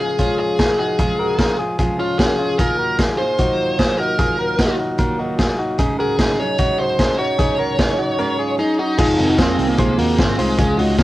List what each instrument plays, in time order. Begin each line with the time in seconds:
Already playing: steel-string acoustic guitar C#3 F3 G#3 F4 G#4, clean electric guitar F4 G#4
0.00 lead electric guitar G#4
0.18 steel-string acoustic guitar C#3 F3 G#3 F4 G#4, clean electric guitar C#4 F4, kick, closed hi-hat
0.40 lead electric guitar G#4
0.58 steel-string acoustic guitar F3 G#3 F4 G#4, clean electric guitar F4 G#4, kick, snare, closed hi-hat
0.79 clean electric guitar D#4 F#4, lead electric guitar G#4
0.98 steel-string acoustic guitar C#3 F3 G#3 F4 G#4, clean electric guitar F4 G#4, kick, closed hi-hat
1.19 clean electric guitar F#4 A#4
1.39 clean electric guitar F4 A#4, kick, snare, closed hi-hat
1.58 steel-string acoustic guitar G#3 F4 G#4, clean electric guitar F4 G#4
1.78 steel-string acoustic guitar C#3 F3 G#3 F4, clean electric guitar F4 G#4, kick, closed hi-hat
1.83 steel-string acoustic guitar G#4
1.99 clean electric guitar C#4 F4, lead electric guitar F4
2.19 clean electric guitar C#4 F#4, lead electric guitar G#4, kick, snare, closed hi-hat
2.39 clean electric guitar C#4 F4
2.58 steel-string acoustic guitar D#3 F#3 A#3 D#4 F4, clean electric guitar F4 G#4, lead electric guitar A#4, kick, closed hi-hat
2.79 clean electric guitar F#4 A#4
2.98 clean electric guitar F4 G#4, kick, snare, closed hi-hat
3.18 steel-string acoustic guitar A#3 D#4 F4, lead electric guitar C5
3.38 steel-string acoustic guitar D#3 F#3 A#3 D#4, clean electric guitar D#4 F#4, kick, closed hi-hat
3.43 steel-string acoustic guitar F4
3.79 clean electric guitar F4 G#4, kick, snare, closed hi-hat
3.98 clean electric guitar D#4 F#4, lead electric guitar A#4
4.18 steel-string acoustic guitar D#3 F#3 A#3 D#4, clean electric guitar F4 G#4, kick, closed hi-hat
4.22 steel-string acoustic guitar F4
4.39 clean electric guitar F#4 A#4
4.58 clean electric guitar D#4 F#4, kick, snare, closed hi-hat
4.79 clean electric guitar D#4 F#4
4.98 steel-string acoustic guitar D#3 F#3 A#3 D#4 F4, clean electric guitar F#4 A#4, kick, closed hi-hat
5.19 clean electric guitar D#4 F#4
5.38 steel-string acoustic guitar F#3 A#3 D#4 F4, clean electric guitar F4 G#4, kick, snare, closed hi-hat
5.59 clean electric guitar D#4 F#4
5.78 steel-string acoustic guitar G#2 C#3 F#3 C#4 D#4 G#4, clean electric guitar D#4 G#4, kick, closed hi-hat
5.99 clean electric guitar F#4 A#4, lead electric guitar G#4
6.19 clean electric guitar D#4 G#4, kick, snare, closed hi-hat
6.38 steel-string acoustic guitar F#3 C#4 D#4 G#4, lead electric guitar C#5
6.58 steel-string acoustic guitar G#2 C#3 F#3 C#4 D#4 G#4, clean electric guitar D#4 F#4, kick, closed hi-hat
6.79 lead electric guitar C5
6.98 steel-string acoustic guitar F#3 C#4 D#4 G#4, clean electric guitar D#4 G#4, kick, snare, closed hi-hat
7.18 clean electric guitar D#4 F#4, lead electric guitar C#5
7.38 steel-string acoustic guitar G#2 C#3 F#3 C#4 D#4, clean electric guitar D#4 G#4, kick, closed hi-hat
7.43 steel-string acoustic guitar G#4
7.59 clean electric guitar F#4 A#4
7.78 clean electric guitar D#4 G#4, kick, snare, closed hi-hat
7.98 clean electric guitar D#4 F#4
8.18 steel-string acoustic guitar G#2 C#3 F#3 C#4 D#4 G#4, clean electric guitar F#4 A#4
8.39 clean electric guitar F4 G#4
8.58 steel-string acoustic guitar F#3 C#4 D#4 G#4, lead electric guitar D#4, clean electric guitar D#4 G#4
8.79 lead electric guitar D#4, clean electric guitar D#4 F#4
8.98 picked electric bass F1, steel-string acoustic guitar F2 C3 D#3 G#3 C4 F4, synth keys D#4 F4 G#4, lead electric guitar D#4, clean electric guitar F4 G#4, kick, crash
9.17 picked electric bass F1, steel-string acoustic guitar D#3 G#3 C4 F4, synth keys D#4 F4 A#4, open hi-hat
9.29 clean electric guitar D#4 F#4
9.37 picked electric bass F2, steel-string acoustic guitar D#3 G#3 C4 F4, lead electric guitar C4, synth keys D#4 F4 G#4, clean electric guitar F4 G#4, kick, snare, closed hi-hat
9.58 picked electric bass C2, steel-string acoustic guitar D#3 G#3 C4 F4, synth keys D#4 F4 A#4, open hi-hat
9.68 lead electric guitar A#3
9.77 steel-string acoustic guitar F2 C3 D#3 G#3 C4 F4, synth keys D#4 F4 G#4, clean electric guitar G#4 C5, kick, closed hi-hat
9.97 picked electric bass D#2, steel-string acoustic guitar D#3 G#3 C4 F4, synth keys D#4 F4 A#4, clean electric guitar F#4 A#4, open hi-hat
10.17 picked electric bass G#1, steel-string acoustic guitar D#3 G#3 C4 F4, lead electric guitar C4, synth keys D#4 F4, clean electric guitar F4 G#4, kick, snare, closed hi-hat
10.37 picked electric bass C2, steel-string acoustic guitar D#3 G#3 C4 F4, lead electric guitar G#3, synth keys D#4 F4 A#4, clean electric guitar G#4 C5, open hi-hat
10.57 picked electric bass C#2, steel-string acoustic guitar C#3 F3 G#3 C#4 F4, synth keys C#4 F4 G#4, clean electric guitar F4 G#4, kick, closed hi-hat
10.77 picked electric bass C#2, steel-string acoustic guitar G#3 C#4 F4, synth keys C#4 F4 G#4, clean electric guitar D#4 F#4, open hi-hat
10.98 picked electric bass C#3, steel-string acoustic guitar F3 G#3 C#4, lead electric guitar G#3, synth keys C#4 F4 G#4, clean electric guitar C#4 F4, kick, snare, closed hi-hat